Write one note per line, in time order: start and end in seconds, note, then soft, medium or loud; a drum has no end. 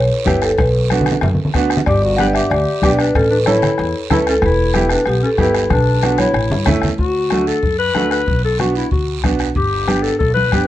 0.00 0.25 C#5 loud
0.25 0.52 G1 medium
0.25 0.48 B3 medium
0.25 0.48 E4 medium
0.25 0.49 G4 medium
0.25 0.33 B4 medium
0.25 bombo low medium
0.25 bombo rim medium
0.25 high conga medium
0.25 short guiro medium
0.42 0.59 A4 medium
0.42 bombo rim medium
0.42 short guiro medium
0.58 1.10 B1 loud
0.58 1.51 B4 medium
0.58 bombo low medium
0.58 bombo rim medium
0.58 high conga medium
0.58 long guiro medium
0.90 1.13 B3 medium
0.90 1.13 D4 medium
0.90 1.13 F#4 medium
0.90 bombo rim medium
0.90 high conga medium
0.90 short guiro medium
1.01 low conga medium
1.06 bombo rim medium
1.06 short guiro medium
1.12 low conga medium
1.21 1.35 F#2 loud
1.21 bombo rim medium
1.21 low conga loud
1.21 long guiro medium
1.35 low conga medium
1.45 low conga medium
1.54 1.80 D2 medium
1.54 1.77 B3 medium
1.54 1.77 D4 medium
1.54 1.77 F#4 medium
1.54 bombo low medium
1.54 bombo rim medium
1.54 short guiro medium
1.70 bombo rim medium
1.70 short guiro medium
1.77 low conga medium
1.86 2.38 G1 loud
1.86 2.02 G4 medium
1.86 2.00 D5 loud
1.86 bombo low medium
1.86 bombo rim medium
1.86 high conga soft
1.86 long guiro medium
2.02 2.18 F#4 medium
2.02 2.17 D5 loud
2.17 2.41 B3 medium
2.17 2.41 D4 medium
2.17 2.42 G4 medium
2.17 2.27 B4 medium
2.17 2.24 F#5 loud
2.17 bombo rim medium
2.17 high conga medium
2.17 short guiro medium
2.33 2.50 G4 medium
2.33 2.49 E5 loud
2.33 bombo rim medium
2.33 short guiro medium
2.50 2.64 D2 loud
2.50 2.82 G4 medium
2.50 2.80 D5 loud
2.50 bombo rim medium
2.50 high conga soft
2.50 long guiro medium
2.82 3.09 B1 medium
2.82 3.05 B3 medium
2.82 3.05 D4 medium
2.82 3.06 G4 medium
2.82 2.91 G4 medium
2.82 2.90 D5 medium
2.82 bombo low medium
2.82 bombo rim medium
2.82 high conga medium
2.82 short guiro medium
2.99 3.14 D4 medium
2.99 3.16 B4 loud
2.99 bombo rim medium
2.99 short guiro medium
3.15 3.66 A1 loud
3.15 3.30 C#4 medium
3.15 3.30 A4 loud
3.15 bombo low medium
3.15 bombo rim medium
3.15 high conga soft
3.15 long guiro medium
3.31 3.38 D4 medium
3.31 3.38 B4 medium
3.46 3.69 C#4 medium
3.46 3.69 E4 medium
3.46 4.07 E4 medium
3.46 3.70 A4 medium
3.46 4.07 C#5 loud
3.46 bombo rim medium
3.46 high conga medium
3.46 short guiro medium
3.63 bombo rim medium
3.63 low conga medium
3.63 short guiro medium
3.78 3.92 E2 loud
3.78 bombo rim medium
3.78 high conga soft
3.78 long guiro medium
4.10 4.36 C#2 medium
4.10 4.33 C#4 medium
4.10 4.33 E4 medium
4.10 4.19 E4 medium
4.10 4.33 A4 medium
4.10 4.19 B4 medium
4.10 bombo low medium
4.10 bombo rim medium
4.10 high conga medium
4.10 low conga medium
4.10 short guiro medium
4.27 4.35 C#4 medium
4.27 4.36 A4 medium
4.27 bombo rim medium
4.27 short guiro medium
4.42 4.94 E1 loud
4.42 4.88 E4 medium
4.42 4.91 B4 loud
4.42 bombo low medium
4.42 bombo rim medium
4.42 high conga soft
4.42 long guiro medium
4.74 4.97 B3 medium
4.74 4.97 E4 medium
4.74 4.97 G4 medium
4.74 bombo rim medium
4.74 high conga medium
4.74 short guiro medium
4.90 5.06 D4 medium
4.90 5.06 B4 medium
4.90 bombo rim medium
4.90 short guiro medium
5.06 5.19 B1 loud
5.06 5.22 B3 medium
5.06 5.22 G4 medium
5.06 bombo rim medium
5.06 high conga soft
5.06 long guiro medium
5.23 5.30 C#4 medium
5.23 5.32 A4 medium
5.38 5.64 G1 medium
5.38 5.61 B3 medium
5.38 5.68 E4 medium
5.38 5.61 E4 medium
5.38 5.61 G4 medium
5.38 bombo low medium
5.38 bombo rim medium
5.38 high conga medium
5.38 short guiro medium
5.42 5.72 B4 medium
5.54 bombo rim medium
5.54 short guiro medium
5.70 6.22 B1 loud
5.70 6.16 D4 medium
5.70 6.17 B4 medium
5.70 bombo low medium
5.70 bombo rim medium
5.70 high conga medium
5.70 long guiro medium
6.02 6.25 B3 medium
6.02 6.25 D4 medium
6.02 6.26 F#4 medium
6.02 bombo rim medium
6.02 high conga medium
6.02 short guiro medium
6.18 6.80 E4 medium
6.18 6.79 C#5 medium
6.18 bombo rim medium
6.18 high conga medium
6.18 short guiro medium
6.34 6.47 A1 loud
6.34 bombo rim medium
6.34 long guiro medium
6.50 6.65 G2 medium
6.50 low conga medium
6.66 6.81 F#2 medium
6.66 6.89 A3 medium
6.66 6.89 C#4 medium
6.66 6.90 E4 medium
6.66 bombo low medium
6.66 bombo rim medium
6.66 low conga medium
6.66 short guiro medium
6.82 6.97 E2 medium
6.82 bombo rim medium
6.82 low conga medium
6.82 short guiro medium
6.98 7.50 D2 medium
6.98 7.49 F#4 medium
6.98 bombo low medium
6.98 long guiro medium
7.30 7.54 A3 medium
7.30 7.54 D4 medium
7.30 7.54 F#4 medium
7.30 bombo rim medium
7.30 high conga medium
7.30 short guiro medium
7.47 7.78 A4 medium
7.47 short guiro medium
7.63 7.95 F#2 medium
7.63 bombo low medium
7.63 long guiro medium
7.79 8.09 B4 loud
7.95 8.21 D2 medium
7.95 8.18 A3 medium
7.95 8.18 D4 medium
7.95 8.18 F#4 medium
7.95 bombo rim medium
7.95 high conga medium
7.95 short guiro medium
8.11 8.42 B4 loud
8.11 bombo rim medium
8.11 short guiro medium
8.26 8.79 B1 loud
8.26 bombo low medium
8.26 long guiro medium
8.44 8.59 A4 medium
8.59 8.82 B3 medium
8.59 8.82 D4 medium
8.59 8.82 F#4 medium
8.59 8.75 F#4 medium
8.59 bombo rim medium
8.59 high conga medium
8.59 short guiro medium
8.75 8.91 E4 medium
8.75 short guiro medium
8.91 9.24 D2 medium
8.91 9.22 F#4 medium
8.91 bombo low medium
8.91 long guiro medium
9.23 9.50 B1 medium
9.23 9.47 B3 medium
9.23 9.47 D4 medium
9.23 9.47 F#4 medium
9.23 bombo low medium
9.23 bombo rim medium
9.23 high conga medium
9.23 short guiro medium
9.39 bombo rim medium
9.39 short guiro medium
9.55 10.07 G1 loud
9.55 10.04 G4 medium
9.55 bombo low medium
9.55 long guiro medium
9.87 10.10 B3 medium
9.87 10.10 D4 medium
9.87 10.10 G4 medium
9.87 bombo rim medium
9.87 high conga medium
9.87 short guiro medium
10.02 10.18 A4 medium
10.02 short guiro medium
10.19 10.52 B1 medium
10.19 10.33 A4 medium
10.19 bombo low medium
10.19 long guiro medium
10.34 10.64 B4 loud
10.34 high conga medium
10.52 10.67 G1 medium
10.52 10.67 B3 medium
10.52 10.67 D4 medium
10.52 10.67 G4 medium
10.52 bombo low medium
10.52 bombo rim medium
10.52 high conga medium
10.52 short guiro medium